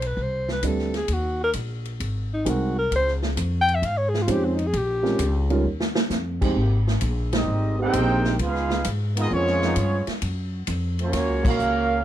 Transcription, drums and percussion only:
0.02 ride medium
0.17 kick soft
0.48 snare soft
0.63 kick soft
0.63 hi-hat pedal medium
0.63 ride medium
0.78 snare soft
0.94 snare soft
0.94 ride soft
1.08 kick soft
1.08 ride medium
1.53 kick soft
1.53 hi-hat pedal medium
1.53 ride medium
1.85 ride soft
2.00 kick soft
2.00 ride medium
2.46 kick soft
2.46 hi-hat pedal medium
2.46 ride medium
2.92 kick soft
2.92 ride medium
3.07 snare soft
3.22 snare medium
3.37 kick soft
3.37 hi-hat pedal medium
3.37 ride medium
3.68 ride medium
3.82 kick soft
3.82 ride medium
4.14 snare medium
4.28 kick soft
4.28 hi-hat pedal medium
4.28 ride medium
4.59 ride medium
4.73 kick soft
4.73 ride medium
5.05 snare soft
5.19 kick soft
5.19 hi-hat pedal medium
5.19 ride medium
5.50 ride soft
5.80 snare medium
5.95 snare loud
6.10 snare medium
6.10 hi-hat pedal medium
6.42 kick medium
6.42 crash medium
6.56 kick soft
6.87 snare medium
7.01 kick soft
7.01 hi-hat pedal medium
7.01 ride medium
7.33 snare medium
7.33 ride medium
7.93 kick soft
7.93 hi-hat pedal medium
7.93 ride medium
8.24 snare soft
8.39 kick soft
8.39 ride medium
8.55 snare soft
8.70 snare medium
8.84 kick soft
8.84 hi-hat pedal medium
8.84 ride medium
9.17 ride medium
9.31 kick soft
9.47 snare soft
9.61 snare medium
9.76 kick soft
9.76 hi-hat pedal medium
9.76 ride medium
10.07 snare medium
10.07 ride medium
10.22 kick soft
10.22 ride medium
10.67 kick soft
10.67 hi-hat pedal medium
10.67 ride medium
10.99 ride medium
11.13 kick soft
11.13 snare soft
11.13 ride medium
11.45 kick loud
11.45 crash loud
11.59 hi-hat pedal medium

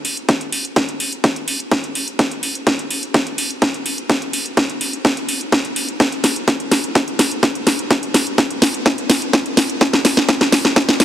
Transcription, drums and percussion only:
0.05 open hi-hat medium
0.17 closed hi-hat soft
0.29 kick loud
0.29 snare medium
0.29 closed hi-hat medium
0.41 closed hi-hat soft
0.52 open hi-hat loud
0.65 closed hi-hat soft
0.76 kick loud
0.76 snare medium
0.76 closed hi-hat medium
0.89 closed hi-hat soft
1.00 open hi-hat loud
1.12 closed hi-hat soft
1.24 kick loud
1.24 snare medium
1.24 closed hi-hat medium
1.36 closed hi-hat soft
1.48 open hi-hat loud
1.60 closed hi-hat soft
1.71 kick loud
1.71 snare medium
1.71 closed hi-hat medium
1.84 closed hi-hat soft
1.95 open hi-hat medium
2.08 closed hi-hat soft
2.19 kick loud
2.19 snare medium
2.19 closed hi-hat medium
2.31 closed hi-hat soft
2.43 open hi-hat loud
2.55 closed hi-hat soft
2.67 kick loud
2.67 snare medium
2.67 closed hi-hat medium
2.79 closed hi-hat soft
2.91 open hi-hat loud
3.03 closed hi-hat soft
3.14 kick loud
3.14 snare medium
3.14 closed hi-hat medium
3.27 closed hi-hat soft
3.38 open hi-hat loud
3.51 closed hi-hat soft
3.62 kick loud
3.62 snare medium
3.62 closed hi-hat medium
3.74 closed hi-hat soft
3.86 open hi-hat medium
3.98 closed hi-hat soft
4.10 kick loud
4.10 snare medium
4.10 closed hi-hat medium
4.22 closed hi-hat soft
4.33 open hi-hat loud
4.46 closed hi-hat soft
4.57 kick loud
4.57 snare medium
4.57 closed hi-hat medium
4.70 closed hi-hat soft
4.81 open hi-hat medium
4.93 closed hi-hat soft
5.05 kick loud
5.05 snare medium
5.05 closed hi-hat medium
5.17 closed hi-hat soft
5.29 open hi-hat loud
5.41 closed hi-hat soft
5.52 kick loud
5.52 snare medium
5.52 closed hi-hat medium
5.65 closed hi-hat soft
5.76 open hi-hat loud
5.89 closed hi-hat soft
6.00 kick loud
6.00 snare medium
6.00 closed hi-hat medium
6.12 closed hi-hat soft
6.24 snare medium
6.24 open hi-hat loud
6.36 closed hi-hat soft
6.48 kick loud
6.48 snare medium
6.48 closed hi-hat medium
6.60 closed hi-hat soft
6.71 snare medium
6.71 open hi-hat medium
6.84 closed hi-hat soft
6.95 kick loud
6.95 snare medium
6.95 closed hi-hat medium
7.08 closed hi-hat soft
7.19 snare medium
7.19 open hi-hat loud
7.31 closed hi-hat soft
7.43 kick loud
7.43 snare medium
7.43 closed hi-hat medium
7.55 closed hi-hat soft
7.67 snare medium
7.67 open hi-hat medium
7.79 closed hi-hat soft
7.91 kick loud
7.91 snare medium
7.91 closed hi-hat medium
8.03 closed hi-hat soft
8.14 snare medium
8.14 open hi-hat loud
8.27 closed hi-hat soft
8.38 kick loud
8.38 snare medium
8.38 closed hi-hat medium
8.51 closed hi-hat soft
8.62 snare medium
8.62 open hi-hat medium
8.74 closed hi-hat soft
8.86 kick loud
8.86 snare medium
8.86 closed hi-hat medium
8.98 closed hi-hat soft
9.10 snare medium
9.10 open hi-hat loud
9.22 closed hi-hat soft
9.33 kick loud
9.33 snare medium
9.33 closed hi-hat medium
9.46 closed hi-hat soft
9.57 snare medium
9.57 open hi-hat medium
9.70 closed hi-hat soft
9.81 kick loud
9.81 snare medium
9.81 closed hi-hat medium
9.93 snare medium
9.93 closed hi-hat soft
10.05 snare medium
10.05 open hi-hat loud
10.17 snare medium
10.17 closed hi-hat soft
10.29 kick loud
10.29 snare medium
10.29 closed hi-hat medium
10.41 snare medium
10.41 closed hi-hat soft
10.52 snare loud
10.52 open hi-hat medium
10.65 snare medium
10.65 closed hi-hat soft
10.76 kick loud
10.76 snare loud
10.76 closed hi-hat medium
10.89 snare medium
10.89 closed hi-hat soft
11.00 snare loud
11.00 open hi-hat loud

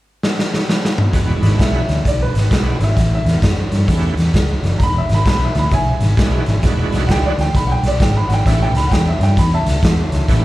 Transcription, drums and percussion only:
0.23 snare medium
0.39 snare medium
0.54 snare medium
0.69 snare medium
0.85 snare medium
0.98 mid tom medium
1.13 kick medium
1.13 snare soft
1.13 closed hi-hat medium
1.43 snare soft
1.43 closed hi-hat medium
1.59 kick medium
1.59 snare loud
1.59 closed hi-hat medium
1.89 snare soft
1.89 closed hi-hat medium
2.05 kick medium
2.05 snare soft
2.05 closed hi-hat medium
2.35 snare soft
2.35 closed hi-hat medium
2.51 kick medium
2.51 snare loud
2.51 closed hi-hat medium
2.80 snare soft
2.80 closed hi-hat medium
2.97 kick medium
2.97 snare soft
2.97 closed hi-hat medium
3.26 snare soft
3.26 closed hi-hat medium
3.42 kick medium
3.42 snare loud
3.42 closed hi-hat medium
3.72 snare soft
3.72 closed hi-hat medium
3.88 kick medium
3.88 snare soft
3.88 closed hi-hat medium
4.17 snare soft
4.17 closed hi-hat medium
4.34 kick medium
4.34 snare loud
4.34 closed hi-hat medium
4.63 snare soft
4.63 closed hi-hat soft
4.80 kick medium
4.80 snare soft
4.80 closed hi-hat medium
5.09 snare soft
5.09 closed hi-hat soft
5.26 kick medium
5.26 snare medium
5.26 closed hi-hat medium
5.55 snare soft
5.55 closed hi-hat medium
5.71 kick medium
5.71 snare soft
5.71 closed hi-hat medium
6.00 snare soft
6.00 closed hi-hat medium
6.17 kick medium
6.17 snare loud
6.17 closed hi-hat medium
6.46 snare soft
6.46 closed hi-hat medium
6.63 kick medium
6.63 snare soft
6.63 closed hi-hat medium
6.92 snare soft
6.92 closed hi-hat medium
7.09 kick medium
7.09 snare medium
7.09 closed hi-hat medium
7.38 snare soft
7.38 closed hi-hat medium
7.55 kick medium
7.55 snare soft
7.55 closed hi-hat medium
7.83 snare soft
7.83 closed hi-hat medium
8.00 kick medium
8.00 snare loud
8.00 closed hi-hat medium
8.30 snare soft
8.30 closed hi-hat medium
8.46 kick medium
8.46 snare soft
8.46 closed hi-hat medium
8.75 snare soft
8.75 closed hi-hat medium
8.91 kick medium
8.91 snare medium
8.91 closed hi-hat medium
9.21 snare soft
9.21 closed hi-hat medium
9.37 kick medium
9.37 snare soft
9.37 closed hi-hat medium
9.66 snare soft
9.66 closed hi-hat medium
9.83 kick medium
9.83 snare loud
9.83 closed hi-hat medium
10.12 snare soft
10.12 closed hi-hat medium
10.28 kick medium
10.28 snare soft
10.28 closed hi-hat medium

